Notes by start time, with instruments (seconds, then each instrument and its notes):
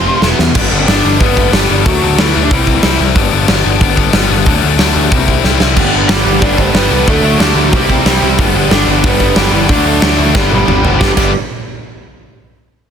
Already playing: lead electric guitar C6
0.05 distorted electric guitar F2 C3 F3 C4 F4
0.22 picked electric bass E1, distorted electric guitar E2 B2 E3 B3 E4, snare
0.38 picked electric bass E2, distorted electric guitar E2 B2 E3 B3, snare
0.55 picked electric bass G1, distorted electric guitar G2 D3 G3 B3 D4, kick, crash
0.71 picked electric bass G1, distorted electric guitar G2 D3 G3 B3 D4
0.81 lead electric guitar C4
0.87 picked electric bass G1, distorted electric guitar G2 D3 G3 B3 D4, lead electric guitar D4 D5, snare, open hi-hat
1.05 picked electric bass G1, distorted electric guitar G2 D3 G3 B3 D4
1.19 picked electric bass G1, distorted electric guitar G2 D3 G3 B3, lead electric guitar B3 B4, kick, open hi-hat
1.23 distorted electric guitar D4
1.36 distorted electric guitar G2 D3 G3 B3 D4, kick
1.52 picked electric bass G1, distorted electric guitar G2 D3 G3 B3 D4, lead electric guitar G3 G4, snare, open hi-hat
1.70 picked electric bass G1, distorted electric guitar G2 D3 G3 B3 D4
1.84 picked electric bass D2, distorted electric guitar D3 F#3 A3 D4, lead electric guitar F#3 F#4, kick, open hi-hat
2.01 picked electric bass D2, distorted electric guitar D3 F#3 A3 D4
2.18 picked electric bass D2, distorted electric guitar D3 F#3 A3 D4, lead electric guitar E3 E4, snare, open hi-hat
2.34 picked electric bass D2, distorted electric guitar D3 F#3 A3 D4
2.43 lead electric guitar D4 D5
2.51 picked electric bass C2, distorted electric guitar C3 G3 C4 E4, lead electric guitar E3 E4, kick, open hi-hat
2.67 distorted electric guitar C3 G3 C4 E4, kick
2.83 picked electric bass C2, distorted electric guitar C3 G3 C4 E4, snare, open hi-hat
2.99 picked electric bass C2, distorted electric guitar C3 G3 C4 E4
3.15 picked electric bass G1, distorted electric guitar G2 D3 G3 B3 D4, kick, open hi-hat
3.31 picked electric bass G1, distorted electric guitar G2 D3 G3 B3 D4
3.48 picked electric bass G1, distorted electric guitar G2 D3 G3 B3 D4, snare, open hi-hat
3.63 picked electric bass G1, distorted electric guitar G2 D3 G3 B3 D4
3.80 picked electric bass G1, distorted electric guitar G2 D3 G3 B3 D4, kick, open hi-hat
3.96 distorted electric guitar G2 D3 G3 B3 D4, kick
4.13 picked electric bass G1, distorted electric guitar G2 D3 G3 B3 D4, snare, open hi-hat
4.29 picked electric bass G1, distorted electric guitar G2 D3 G3 B3 D4
4.46 picked electric bass D2, distorted electric guitar D3 F#3 A3 D4, kick, open hi-hat
4.62 picked electric bass D2, distorted electric guitar D3 F#3 A3 D4
4.78 picked electric bass D2, distorted electric guitar D3 F#3 A3 D4, snare, open hi-hat
4.95 picked electric bass D2, distorted electric guitar D3 F#3 A3 D4
5.11 picked electric bass C2, distorted electric guitar C3 G3 C4 E4, kick, open hi-hat
5.27 distorted electric guitar C3 G3 C4 E4, kick
5.43 picked electric bass C2, distorted electric guitar C3 G3 C4 E4, snare
5.60 picked electric bass C2, distorted electric guitar C3 G3 C4 E4, snare
5.75 picked electric bass G1, distorted electric guitar G2 D3 G3 B3 D4, kick, crash
5.92 picked electric bass G1, distorted electric guitar G2 D3 G3 B3 D4
6.08 picked electric bass G1, distorted electric guitar G2 D3 G3 B3 D4, lead electric guitar G3 G4, snare, open hi-hat
6.24 picked electric bass G1, distorted electric guitar G2 D3 G3 B3 D4
6.40 picked electric bass G1, distorted electric guitar G2 D3 G3 B3 D4, lead electric guitar D4 D5, kick, open hi-hat
6.57 distorted electric guitar G2 D3 G3 B3 D4, lead electric guitar C4 C5, kick
6.73 picked electric bass G1, distorted electric guitar G2 D3 G3 B3 D4, lead electric guitar B3 B4, snare, open hi-hat
6.89 picked electric bass C2, distorted electric guitar G2 D3 G3 B3 D4
7.05 picked electric bass D2, distorted electric guitar D3 F#3 A3 D4, lead electric guitar A3 A4, kick, open hi-hat
7.22 picked electric bass D2, distorted electric guitar D3 F#3 A3 D4
7.39 picked electric bass D2, distorted electric guitar D3 F#3 A3 D4, lead electric guitar G3 G4, snare, open hi-hat
7.55 picked electric bass D2, distorted electric guitar D3 F#3 A3 D4
7.66 lead electric guitar F#3 F#4
7.72 picked electric bass C2, distorted electric guitar C3 G3 C4 E4, lead electric guitar G3, kick, open hi-hat
7.76 lead electric guitar G4
7.88 distorted electric guitar C3 G3 C4 E4, kick
8.05 picked electric bass C2, distorted electric guitar C3 G3 C4 E4, snare, open hi-hat
8.22 picked electric bass C2, distorted electric guitar C3 G3 C4 E4
8.38 picked electric bass G1, distorted electric guitar G2 D3 G3 B3 D4, kick, open hi-hat
8.54 picked electric bass G1, distorted electric guitar G2 D3 G3 B3 D4
8.71 picked electric bass G1, distorted electric guitar G2 D3 G3 B3 D4, lead electric guitar D4 D5, snare, open hi-hat
8.87 picked electric bass G1, distorted electric guitar G2 D3 G3 B3 D4
9.03 picked electric bass G1, distorted electric guitar G2 D3 G3 B3 D4, lead electric guitar B3 B4, kick, open hi-hat
9.20 distorted electric guitar G2 D3 G3 B3 D4, kick
9.35 picked electric bass G1, distorted electric guitar G2 D3 G3 B3 D4, lead electric guitar G3 G4, snare, open hi-hat
9.52 picked electric bass G1, distorted electric guitar G2 D3 G3 B3 D4, lead electric guitar E3 E4
9.69 picked electric bass D2, distorted electric guitar D3 F#3 A3 D4, lead electric guitar D4 D5, kick, open hi-hat
9.84 picked electric bass D2, distorted electric guitar D3 F#3 A3 D4
10.02 picked electric bass D2, distorted electric guitar D3 F#3 A3 D4, snare
10.18 picked electric bass D2, distorted electric guitar D3 F#3 A3 D4
10.33 picked electric bass G1, distorted electric guitar G2 D3 G3 B3 D4, lead electric guitar G3 G4, kick, snare
10.49 distorted electric guitar G2 D3 G3 B3 D4, high tom
10.66 picked electric bass G1, distorted electric guitar G2 D3 G3 B3 D4, mid tom
10.83 picked electric bass G1, distorted electric guitar G2 D3 G3 B3 D4, floor tom
10.99 picked electric bass G1, distorted electric guitar G2 D3 G3 B3 D4, lead electric guitar G4, kick, snare
11.15 picked electric bass G1, distorted electric guitar G2 D3 G3 B3 D4, lead electric guitar G4, kick, crash